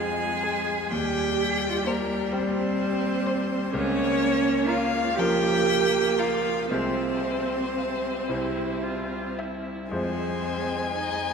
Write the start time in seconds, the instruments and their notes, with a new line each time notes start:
Already playing: grand piano F2 G#3 C4 F4, viola G#3, cello G#4, violin G#5
0.43 violin G#4
0.91 grand piano D#2, viola G3, cello G4, violin G5
1.50 cello G#4
1.60 cello G4
1.69 cello F4
1.76 cello G4
1.86 cello A#3, violin A#4 C5
2.32 grand piano G3 C4 G4, cello C4, violin C5
3.26 violin C5
3.73 grand piano C#2, viola A#3, cello C#4, violin C#5
4.68 cello F4, violin A#4 F5
5.16 grand piano F3 F4 A#4, viola A#3, cello G4, violin G5
6.18 cello F4, violin A#4 F5
6.70 grand piano C2 G#3 F4 C5, cello C4, viola C4, violin C5
7.78 violin F5
8.29 grand piano C2 G3 E4 C5, viola E4
8.83 viola F4
9.39 viola E4, violin E5
9.91 grand piano F2 G#3 F4 C5, viola G#3, cello C4, violin C5 G#5
10.94 cello D#4, violin D#5